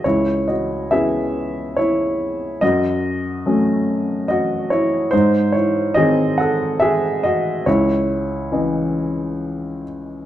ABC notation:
X:1
M:3/4
L:1/8
Q:1/4=70
K:C#m
V:1 name="Upright piano"
[Ec] [Fd] [Ge]2 [Ec]2 | [Fd]4 [Fd] [Ec] | [D^B] [Ec] [Gd] [Af] [Ge] [Fd] | [Ec]4- [Ec] z |]
V:2 name="Upright piano"
C,,2 [B,CE]4 | F,,2 [F,A,C]4 | G,,2 [D,^B,]4 | C,,2 [E,Cd]4 |]